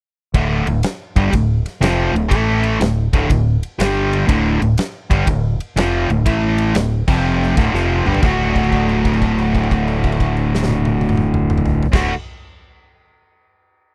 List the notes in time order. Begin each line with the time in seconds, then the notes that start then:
0.34 D1 D2 A2 D3, kick, ride
0.67 D1 D2 A2, ride
0.83 snare, ride
1.16 G1 G2 D3 G3, kick, ride
1.32 D1 D2 A2, kick, ride
1.66 snare, ride
1.81 F1 F2 C3 F3, snare, ride
2.14 D1 D2 A2, ride
2.29 A1 A2 E3 A3, kick, ride
2.63 ride
2.80 D1 D2 A2, snare, ride
3.13 D1 D2 A2 D3, kick, ride
3.29 D1 D2 A2, kick, ride
3.63 ride
3.79 G1 G2 D3 G3, snare, ride
4.13 ride
4.28 D1 D2 A2 D3, kick, ride
4.61 D1 D2 A2, ride
4.78 snare, ride
5.10 G1 G2 D3 G3, kick, ride
5.27 D1 D2 A2, kick, ride
5.60 ride
5.76 F1 F2 C3 F3, snare, ride
6.10 D1 D2 A2, ride
6.25 A1 A2 E3 A3, kick, ride
6.58 ride
6.75 D1 D2 A2, snare, ride
7.08 F1 F2 C3 F3, kick, crash
7.42 snare
7.56 D1 D2 A2 D3, kick, snare, ride
7.73 F1 F2 C3 F3, snare
8.06 G1 G2 D3 G3, mid tom
8.14 floor tom
8.22 D1 D2 A2 D3 A3 F#4, kick, crash
8.56 kick, crash
8.64 crash
8.72 kick, crash
8.89 crash
9.05 kick, crash
9.14 crash
9.22 kick, crash
9.38 crash
9.55 kick, crash
9.63 crash
9.71 kick, crash
9.88 crash
10.04 kick, crash
10.12 crash
10.20 kick, crash
10.37 crash
10.55 snare
10.63 snare
10.69 high tom
10.85 high tom
11.01 high tom
11.09 mid tom
11.17 mid tom
11.34 mid tom
11.50 mid tom
11.58 mid tom
11.66 floor tom
11.83 floor tom
11.92 D1 D2 A2 D3 A3, kick, snare, crash
11.96 F#4